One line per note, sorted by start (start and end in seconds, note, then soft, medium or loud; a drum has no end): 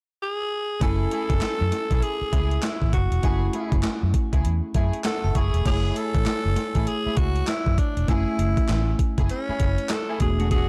0.23 0.78 G#4 loud
0.80 1.05 F#1 medium
0.80 3.19 A3 medium
0.80 0.97 A3 medium
0.80 3.19 C#4 medium
0.80 0.97 E4 medium
0.80 3.20 E4 medium
0.80 0.97 G#4 loud
0.80 2.05 A4 loud
0.80 3.20 G#5 medium
0.80 kick loud
0.80 closed hi-hat medium
1.11 1.27 A3 medium
1.11 1.27 E4 medium
1.11 1.28 G#4 medium
1.11 closed hi-hat medium
1.30 1.39 F#1 medium
1.30 kick loud
1.30 closed hi-hat soft
1.41 muted fingered electric bass stroke soft
1.41 snare loud
1.41 clap medium
1.41 closed hi-hat medium
1.61 1.70 F#2 medium
1.72 snare medium
1.72 closed hi-hat medium
1.91 2.00 B1 medium
1.91 2.01 A3 medium
1.91 2.01 E4 medium
1.91 2.01 G#4 medium
1.91 kick medium
1.91 closed hi-hat medium
2.02 2.66 G#4 loud
2.02 closed hi-hat medium
2.21 muted fingered electric bass stroke soft
2.32 2.57 C#2 medium
2.32 2.48 A3 medium
2.32 2.48 E4 medium
2.32 2.49 G#4 medium
2.32 kick medium
2.32 closed hi-hat medium
2.51 closed hi-hat soft
2.63 2.93 E4 medium
2.63 snare loud
2.63 clap medium
2.63 closed hi-hat medium
2.82 2.91 A1 medium
2.82 kick medium
2.93 3.08 F#1 medium
2.93 3.81 F#4 medium
2.93 kick medium
2.93 closed hi-hat medium
3.12 3.21 E1 medium
3.12 closed hi-hat medium
3.22 3.48 F#1 loud
3.22 5.31 A3 medium
3.22 3.39 A3 medium
3.22 5.32 C#4 medium
3.22 3.39 E4 medium
3.22 5.32 E4 medium
3.22 3.39 G#4 loud
3.22 5.32 G#5 medium
3.22 kick loud
3.22 closed hi-hat medium
3.53 3.70 A3 medium
3.53 3.70 E4 medium
3.53 3.70 G#4 medium
3.53 closed hi-hat medium
3.72 3.81 F#1 medium
3.72 kick loud
3.72 closed hi-hat soft
3.83 snare loud
3.83 clap medium
3.83 closed hi-hat medium
4.03 4.12 F#2 medium
4.14 kick medium
4.14 closed hi-hat medium
4.32 4.42 C#2 medium
4.32 4.43 A3 medium
4.32 4.43 E4 medium
4.32 4.43 G#4 medium
4.32 kick medium
4.32 closed hi-hat medium
4.45 4.60 E2 medium
4.45 closed hi-hat medium
4.74 4.90 F#2 loud
4.74 4.91 A3 medium
4.74 4.91 E4 medium
4.74 4.91 G#4 medium
4.74 5.04 E5 medium
4.74 kick medium
4.74 closed hi-hat medium
4.93 closed hi-hat soft
5.04 5.38 A4 loud
5.04 5.23 F#5 medium
5.04 snare loud
5.04 clap medium
5.04 closed hi-hat medium
5.24 5.33 F#1 medium
5.24 5.35 A5 medium
5.35 5.50 F#1 medium
5.35 5.51 A3 medium
5.35 5.51 E4 medium
5.35 5.52 G#4 medium
5.35 5.67 G#4 medium
5.35 5.64 C#6 medium
5.35 kick medium
5.35 closed hi-hat medium
5.54 5.63 E1 medium
5.54 closed hi-hat medium
5.65 5.90 F#1 medium
5.65 8.04 A3 medium
5.65 5.94 A3 medium
5.65 5.94 E4 medium
5.65 8.05 E4 medium
5.65 5.95 G#4 loud
5.65 5.99 G#4 loud
5.65 8.04 C#5 medium
5.65 8.05 G#5 medium
5.65 kick loud
5.65 closed hi-hat medium
5.65 crash medium
5.96 6.89 A4 loud
5.96 closed hi-hat medium
6.15 6.24 A1 medium
6.15 kick loud
6.15 closed hi-hat soft
6.26 snare loud
6.26 clap medium
6.26 closed hi-hat medium
6.45 6.55 F#1 medium
6.56 snare medium
6.56 closed hi-hat medium
6.75 6.85 A1 medium
6.75 6.85 A3 medium
6.75 6.85 E4 medium
6.75 6.86 G#4 medium
6.75 kick medium
6.75 closed hi-hat medium
6.87 7.19 G#4 loud
6.87 closed hi-hat medium
7.06 7.16 A3 medium
7.06 7.16 E4 medium
7.06 7.16 G#4 medium
7.06 muted fingered electric bass stroke soft
7.17 7.41 C#2 medium
7.17 7.50 F#4 loud
7.17 kick loud
7.17 closed hi-hat medium
7.35 closed hi-hat soft
7.47 7.80 E4 loud
7.47 snare loud
7.47 clap medium
7.47 closed hi-hat medium
7.66 7.76 F#2 medium
7.66 kick medium
7.78 8.11 D4 medium
7.78 kick medium
7.78 closed hi-hat medium
7.97 8.06 E1 medium
7.97 closed hi-hat medium
8.08 8.23 F#1 loud
8.08 8.37 A3 medium
8.08 10.16 A3 medium
8.08 10.16 C#4 medium
8.08 8.37 E4 medium
8.08 10.17 E4 medium
8.08 9.04 E4 loud
8.08 8.37 G#4 loud
8.08 10.18 G#5 medium
8.08 kick loud
8.08 closed hi-hat medium
8.39 8.53 F#1 medium
8.39 closed hi-hat medium
8.57 kick loud
8.57 closed hi-hat soft
8.69 8.93 A1 medium
8.69 snare loud
8.69 clap medium
8.69 closed hi-hat medium
8.99 kick loud
8.99 closed hi-hat medium
9.18 9.27 F#1 medium
9.18 9.28 A3 medium
9.18 9.28 E4 medium
9.18 9.28 G#4 medium
9.18 kick medium
9.18 closed hi-hat medium
9.29 9.93 C#4 loud
9.29 closed hi-hat medium
9.48 9.58 A3 medium
9.48 9.58 E4 medium
9.48 9.59 G#4 medium
9.48 muted fingered electric bass stroke soft
9.60 9.75 F#1 medium
9.60 kick medium
9.60 closed hi-hat medium
9.78 closed hi-hat soft
9.89 10.21 A4 medium
9.89 snare loud
9.89 clap loud
9.89 closed hi-hat medium
10.09 10.19 A3 medium
10.09 10.19 E4 medium
10.09 10.19 G#4 medium
10.20 10.68 E1 loud
10.20 10.69 A3 medium
10.20 10.69 B3 medium
10.20 10.69 D4 medium
10.20 10.69 F#4 medium
10.20 10.49 G#4 medium
10.20 kick medium
10.20 closed hi-hat medium
10.39 10.49 A3 medium
10.39 10.49 D4 medium
10.39 10.49 F#4 medium
10.39 closed hi-hat medium
10.51 10.69 A3 medium
10.51 10.69 D4 medium
10.51 10.69 F#4 loud
10.51 10.69 G#4 loud
10.51 kick loud
10.51 closed hi-hat medium